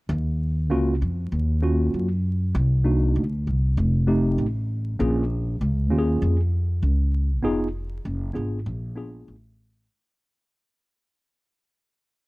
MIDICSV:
0, 0, Header, 1, 3, 480
1, 0, Start_track
1, 0, Key_signature, -6, "minor"
1, 0, Tempo, 612245
1, 77, Time_signature, 4, 2, 24, 8
1, 9627, End_track
2, 0, Start_track
2, 0, Title_t, "Tine electric piano"
2, 0, Program_c, 0, 4
2, 550, Note_on_c, 0, 58, 80
2, 555, Note_on_c, 0, 61, 70
2, 558, Note_on_c, 0, 65, 75
2, 559, Note_on_c, 0, 66, 85
2, 733, Note_off_c, 0, 58, 0
2, 735, Note_off_c, 0, 61, 0
2, 737, Note_off_c, 0, 65, 0
2, 737, Note_off_c, 0, 66, 0
2, 1272, Note_on_c, 0, 58, 66
2, 1275, Note_on_c, 0, 61, 64
2, 1275, Note_on_c, 0, 65, 64
2, 1280, Note_on_c, 0, 66, 79
2, 1626, Note_off_c, 0, 58, 0
2, 1627, Note_off_c, 0, 61, 0
2, 1627, Note_off_c, 0, 65, 0
2, 1629, Note_off_c, 0, 66, 0
2, 2229, Note_on_c, 0, 58, 67
2, 2231, Note_on_c, 0, 62, 62
2, 2231, Note_on_c, 0, 63, 58
2, 2239, Note_on_c, 0, 66, 70
2, 2529, Note_off_c, 0, 58, 0
2, 2529, Note_off_c, 0, 62, 0
2, 2530, Note_off_c, 0, 63, 0
2, 2534, Note_off_c, 0, 66, 0
2, 3192, Note_on_c, 0, 57, 72
2, 3195, Note_on_c, 0, 60, 67
2, 3199, Note_on_c, 0, 67, 81
2, 3200, Note_on_c, 0, 63, 68
2, 3490, Note_off_c, 0, 57, 0
2, 3492, Note_off_c, 0, 60, 0
2, 3493, Note_off_c, 0, 67, 0
2, 3494, Note_off_c, 0, 63, 0
2, 3915, Note_on_c, 0, 58, 77
2, 3916, Note_on_c, 0, 61, 72
2, 3922, Note_on_c, 0, 65, 67
2, 3923, Note_on_c, 0, 68, 79
2, 4095, Note_off_c, 0, 58, 0
2, 4096, Note_off_c, 0, 61, 0
2, 4099, Note_off_c, 0, 65, 0
2, 4099, Note_off_c, 0, 68, 0
2, 4628, Note_on_c, 0, 58, 72
2, 4629, Note_on_c, 0, 61, 72
2, 4638, Note_on_c, 0, 65, 70
2, 4638, Note_on_c, 0, 67, 63
2, 4693, Note_on_c, 0, 68, 87
2, 4696, Note_off_c, 0, 67, 0
2, 4984, Note_off_c, 0, 58, 0
2, 4984, Note_off_c, 0, 61, 0
2, 4988, Note_off_c, 0, 65, 0
2, 5016, Note_off_c, 0, 68, 0
2, 5822, Note_on_c, 0, 59, 78
2, 5832, Note_on_c, 0, 63, 75
2, 5834, Note_on_c, 0, 65, 75
2, 5838, Note_on_c, 0, 68, 91
2, 6009, Note_off_c, 0, 59, 0
2, 6014, Note_off_c, 0, 63, 0
2, 6015, Note_off_c, 0, 65, 0
2, 6017, Note_off_c, 0, 68, 0
2, 6535, Note_on_c, 0, 59, 68
2, 6539, Note_on_c, 0, 62, 60
2, 6542, Note_on_c, 0, 65, 58
2, 6547, Note_on_c, 0, 68, 70
2, 6725, Note_off_c, 0, 59, 0
2, 6727, Note_off_c, 0, 62, 0
2, 6729, Note_off_c, 0, 65, 0
2, 6731, Note_off_c, 0, 68, 0
2, 7022, Note_on_c, 0, 59, 70
2, 7026, Note_on_c, 0, 62, 68
2, 7029, Note_on_c, 0, 65, 66
2, 7035, Note_on_c, 0, 68, 79
2, 7325, Note_off_c, 0, 59, 0
2, 7327, Note_off_c, 0, 62, 0
2, 7328, Note_off_c, 0, 65, 0
2, 7331, Note_off_c, 0, 68, 0
2, 9627, End_track
3, 0, Start_track
3, 0, Title_t, "Upright bass"
3, 0, Program_c, 1, 32
3, 71, Note_on_c, 1, 39, 102
3, 554, Note_off_c, 1, 39, 0
3, 554, Note_on_c, 1, 37, 89
3, 783, Note_off_c, 1, 37, 0
3, 798, Note_on_c, 1, 41, 80
3, 1025, Note_off_c, 1, 41, 0
3, 1035, Note_on_c, 1, 39, 85
3, 1492, Note_off_c, 1, 39, 0
3, 1520, Note_on_c, 1, 42, 75
3, 1975, Note_off_c, 1, 42, 0
3, 1997, Note_on_c, 1, 36, 104
3, 2453, Note_off_c, 1, 36, 0
3, 2475, Note_on_c, 1, 38, 83
3, 2704, Note_off_c, 1, 38, 0
3, 2721, Note_on_c, 1, 36, 73
3, 2947, Note_off_c, 1, 36, 0
3, 2958, Note_on_c, 1, 29, 97
3, 3413, Note_off_c, 1, 29, 0
3, 3436, Note_on_c, 1, 33, 87
3, 3892, Note_off_c, 1, 33, 0
3, 3918, Note_on_c, 1, 34, 98
3, 4374, Note_off_c, 1, 34, 0
3, 4398, Note_on_c, 1, 37, 91
3, 4630, Note_off_c, 1, 37, 0
3, 4630, Note_on_c, 1, 39, 83
3, 4861, Note_off_c, 1, 39, 0
3, 4876, Note_on_c, 1, 41, 95
3, 5332, Note_off_c, 1, 41, 0
3, 5351, Note_on_c, 1, 37, 85
3, 5838, Note_off_c, 1, 37, 0
3, 5838, Note_on_c, 1, 29, 106
3, 6293, Note_off_c, 1, 29, 0
3, 6312, Note_on_c, 1, 30, 86
3, 6542, Note_off_c, 1, 30, 0
3, 6556, Note_on_c, 1, 32, 78
3, 6784, Note_off_c, 1, 32, 0
3, 6790, Note_on_c, 1, 34, 98
3, 7249, Note_off_c, 1, 34, 0
3, 7275, Note_on_c, 1, 33, 87
3, 7732, Note_off_c, 1, 33, 0
3, 9627, End_track
0, 0, End_of_file